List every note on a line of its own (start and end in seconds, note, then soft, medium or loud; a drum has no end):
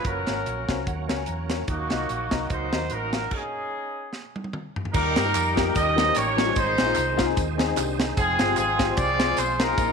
0.04 0.24 F#1 medium
0.04 3.28 F#3 medium
0.04 3.28 A#3 medium
0.04 1.67 C#4 medium
0.04 0.83 C#4 medium
0.04 0.83 F#4 medium
0.04 0.88 A#4 medium
0.04 kick medium
0.04 closed hi-hat medium
0.27 0.44 G#1 medium
0.27 0.39 A#3 medium
0.27 0.39 C#4 medium
0.27 0.39 F#4 medium
0.27 0.39 C#5 medium
0.27 snare medium
0.27 closed hi-hat medium
0.46 0.66 A#1 medium
0.46 closed hi-hat medium
0.69 0.84 C2 medium
0.69 0.79 A#3 medium
0.69 0.79 C#4 medium
0.69 0.79 F#4 medium
0.69 0.80 C5 medium
0.69 0.85 F5 medium
0.69 kick medium
0.69 snare medium
0.69 closed hi-hat medium
0.87 1.06 D#2 medium
0.87 1.16 F#5 medium
0.87 kick medium
0.87 closed hi-hat medium
1.09 1.25 C#2 medium
1.09 1.20 A#3 medium
1.09 1.20 C#4 medium
1.09 1.20 F#4 medium
1.09 1.20 C#5 medium
1.09 snare loud
1.09 closed hi-hat medium
1.17 1.26 G#5 medium
1.26 1.62 E2 medium
1.26 1.48 A#5 medium
1.26 closed hi-hat medium
1.49 1.60 A#3 medium
1.49 1.60 C#4 medium
1.49 1.61 F#4 medium
1.49 1.61 C#5 medium
1.49 1.67 C#6 medium
1.49 snare medium
1.49 closed hi-hat medium
1.68 1.87 D#2 medium
1.68 2.28 D#3 medium
1.68 2.47 A#3 medium
1.68 3.30 D#4 medium
1.68 2.47 D#4 medium
1.68 2.46 F#4 medium
1.68 kick loud
1.68 closed hi-hat medium
1.90 2.07 C2 medium
1.90 2.02 A#3 medium
1.90 2.02 D#4 medium
1.90 2.02 F#4 medium
1.90 2.02 D#5 medium
1.90 snare medium
1.90 closed hi-hat medium
2.09 2.29 A#1 medium
2.09 closed hi-hat medium
2.31 2.47 C2 medium
2.31 2.42 A#3 medium
2.31 2.42 D#4 medium
2.31 2.42 F#4 medium
2.31 2.42 D#5 medium
2.31 kick medium
2.31 snare loud
2.31 closed hi-hat medium
2.50 2.70 C#2 medium
2.50 2.91 D#4 medium
2.50 2.91 F#4 medium
2.50 2.91 C5 medium
2.50 kick medium
2.50 closed hi-hat medium
2.72 2.88 D#2 medium
2.72 2.83 A#3 medium
2.72 2.83 D#4 medium
2.72 2.83 F#4 medium
2.72 2.83 D#5 medium
2.72 snare loud
2.72 closed hi-hat medium
2.90 3.26 A1 medium
2.90 3.29 D#4 medium
2.90 3.29 F#4 medium
2.90 3.32 A#4 medium
2.90 closed hi-hat medium
3.13 3.24 A#3 medium
3.13 3.24 D#4 soft
3.13 3.24 F#4 soft
3.13 3.24 F5 medium
3.13 snare medium
3.13 closed hi-hat medium
3.31 4.10 C#4 medium
3.31 4.10 D#4 medium
3.31 4.14 G#4 medium
3.31 kick medium
3.31 crash medium
4.13 snare soft
4.36 high tom medium
4.44 high tom medium
4.53 mid tom medium
4.76 floor tom medium
4.85 floor tom medium
4.93 5.14 D#2 loud
4.93 5.53 D#3 medium
4.93 6.54 G3 medium
4.93 6.54 A#3 medium
4.93 5.71 D#4 medium
4.93 5.74 D#4 medium
4.93 5.71 G4 medium
4.93 5.71 A#4 loud
4.93 kick loud
4.93 crash loud
4.93 tambourine medium
5.16 5.32 G2 loud
5.16 5.22 A#3 medium
5.16 5.22 D#4 medium
5.16 5.22 G4 medium
5.16 snare loud
5.16 closed hi-hat medium
5.16 tambourine medium
5.25 5.36 A#3 medium
5.25 5.36 D#4 medium
5.25 5.37 A#4 medium
5.35 5.69 F2 medium
5.35 clap medium
5.35 closed hi-hat medium
5.35 tambourine medium
5.56 5.62 A#3 medium
5.56 5.62 D#4 medium
5.56 5.62 G4 loud
5.56 kick medium
5.56 snare loud
5.56 closed hi-hat medium
5.56 tambourine medium
5.64 5.74 A#3 medium
5.64 5.74 D#4 medium
5.64 5.74 G4 medium
5.73 6.10 D#2 loud
5.73 6.33 D#3 medium
5.73 8.15 D#3 medium
5.73 6.55 C#4 medium
5.73 6.55 G4 medium
5.73 6.14 G4 medium
5.73 6.15 A#4 medium
5.73 6.15 D#5 loud
5.73 kick loud
5.73 closed hi-hat loud
5.73 tambourine medium
5.96 6.02 G3 medium
5.96 6.02 A#3 medium
5.96 6.02 C#4 medium
5.96 6.02 D#4 medium
5.96 6.02 A#4 medium
5.96 snare loud
5.96 closed hi-hat medium
6.00 tambourine medium
6.05 6.17 G3 medium
6.05 6.17 A#3 medium
6.05 6.17 C#4 medium
6.05 6.17 D#4 medium
6.05 6.17 C5 medium
6.15 6.51 A1 medium
6.15 6.53 G4 medium
6.15 6.53 A#4 medium
6.15 6.56 C#5 loud
6.15 clap loud
6.15 closed hi-hat loud
6.15 tambourine loud
6.37 6.43 G3 medium
6.37 6.43 A#3 medium
6.37 6.43 C#4 medium
6.37 6.43 D#4 medium
6.37 6.43 A#4 medium
6.37 snare loud
6.37 closed hi-hat medium
6.37 tambourine medium
6.46 6.55 G3 medium
6.46 6.56 A#3 medium
6.46 6.56 C#4 medium
6.46 6.56 D#4 medium
6.46 6.56 C5 medium
6.55 6.75 G#1 loud
6.55 7.15 G#2 medium
6.55 9.75 G#3 medium
6.55 9.75 C4 medium
6.55 7.33 D#4 medium
6.55 7.33 G#4 medium
6.55 7.37 C5 loud
6.55 kick loud
6.55 closed hi-hat medium
6.55 tambourine medium
6.78 6.94 A#1 medium
6.78 6.84 C4 medium
6.78 6.84 D#4 medium
6.78 6.84 G#4 medium
6.78 snare loud
6.78 closed hi-hat medium
6.78 tambourine medium
6.86 6.98 C4 medium
6.86 6.98 D#4 medium
6.86 6.98 F4 medium
6.95 7.31 C2 medium
6.95 clap loud
6.95 closed hi-hat medium
6.95 tambourine medium
7.17 7.23 C4 medium
7.17 7.23 D#4 medium
7.17 7.23 F4 loud
7.17 kick medium
7.17 snare loud
7.17 closed hi-hat medium
7.17 tambourine medium
7.25 7.38 C4 medium
7.25 7.38 D#4 medium
7.25 7.38 G#4 medium
7.37 7.71 D#2 loud
7.37 kick loud
7.37 closed hi-hat loud
7.37 tambourine medium
7.58 7.64 C4 medium
7.58 7.64 D#4 medium
7.58 7.64 G#4 medium
7.58 snare loud
7.58 closed hi-hat medium
7.58 tambourine medium
7.67 7.78 C4 medium
7.67 7.76 D#4 medium
7.67 7.76 G#4 loud
7.76 8.12 C2 medium
7.76 7.98 D4 medium
7.76 7.98 G4 medium
7.76 clap loud
7.76 closed hi-hat loud
7.76 tambourine loud
7.99 8.38 D#4 medium
7.99 8.37 G#4 medium
7.99 snare loud
7.99 closed hi-hat medium
7.99 tambourine medium
8.17 8.36 F1 loud
8.17 9.92 F3 medium
8.17 8.57 C4 medium
8.17 8.57 F4 medium
8.17 8.55 G#4 loud
8.17 kick loud
8.17 closed hi-hat medium
8.17 tambourine medium
8.39 8.55 G1 medium
8.39 8.44 C4 medium
8.39 8.45 F4 medium
8.39 8.45 G#4 medium
8.39 snare loud
8.39 closed hi-hat medium
8.39 tambourine medium
8.47 8.59 C4 medium
8.47 8.59 F4 medium
8.47 8.59 G4 medium
8.57 8.92 G#1 loud
8.57 9.34 C4 medium
8.57 8.96 F4 medium
8.57 8.95 G#4 loud
8.57 clap medium
8.57 closed hi-hat loud
8.57 tambourine medium
8.78 8.84 C4 medium
8.78 8.84 F4 medium
8.78 8.84 G4 medium
8.78 kick medium
8.78 snare loud
8.78 closed hi-hat medium
8.78 tambourine medium
8.88 8.99 C4 medium
8.88 8.99 F4 medium
8.88 8.99 G4 medium
8.97 9.32 C2 loud
8.97 9.60 F4 medium
8.97 9.74 G#4 medium
8.97 9.38 D5 loud
8.97 kick loud
8.97 closed hi-hat loud
8.97 tambourine medium
9.19 9.25 C4 medium
9.19 9.25 F4 medium
9.19 9.25 G#4 medium
9.19 snare loud
9.19 closed hi-hat medium
9.19 tambourine medium
9.27 9.39 C4 medium
9.27 9.40 F4 medium
9.27 9.40 G#4 medium
9.37 9.72 B1 medium
9.37 9.60 C5 loud
9.37 clap loud
9.37 closed hi-hat medium
9.37 tambourine loud
9.59 9.65 C4 medium
9.59 9.92 D#4 medium
9.59 9.65 F4 medium
9.59 9.92 F4 medium
9.59 9.65 A#4 medium
9.59 9.92 A#4 loud
9.59 snare loud
9.59 closed hi-hat medium
9.59 tambourine medium
9.68 9.78 C4 medium
9.68 9.78 F4 medium
9.68 9.78 G#4 medium
9.78 9.92 A#1 loud
9.78 9.92 A#2 medium
9.78 9.92 A#3 medium
9.78 9.92 D#4 medium
9.78 kick loud
9.78 closed hi-hat medium
9.78 tambourine medium